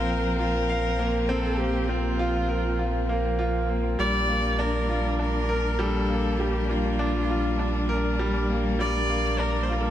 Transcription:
Already playing: A#1 F3 A#3 C4 F4 A#4 F5
0.09 A#4
0.39 F4 A#4
0.69 F5
0.99 A#3
1.22 A#4
1.28 C4 A4
1.58 A#3 G4
1.88 C4 F4
2.19 F4
2.49 A#4
2.79 F4
3.09 A#3
3.39 F4
3.69 A#3
3.98 A#1 G3 A#3 D4 D5
4.28 A#3
4.59 D4 A#4
4.89 F4
5.19 D4 A#4
5.49 A#4
5.79 G3 A4
6.09 A#3
6.39 G3 G4
6.69 A#3 F4
6.99 D4
7.29 F4
7.59 D4
7.89 A#4
8.19 G3
8.49 A#3
8.79 G3 D5
9.09 A#3
9.39 D4 A#4
9.63 C5
9.69 F4 A#4
9.81 A4

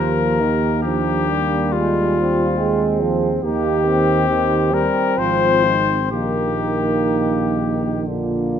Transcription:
Already playing: D#2 F3 A#3 G4 A#4
0.40 D#3
0.83 F3 A#3 D4 G4
1.30 G3
1.72 G#3 F4
2.17 C4
2.56 G#3 G#4
3.01 F3
3.42 D#2 D#3 A#3 G4
3.84 C4
4.28 D#3 G4
4.72 G3 A#4
5.17 G#1 F3 F4 C5
5.65 D#4
6.10 A#1 D#3 A#3 D#4 G4
8.06 D3 A#3 F4

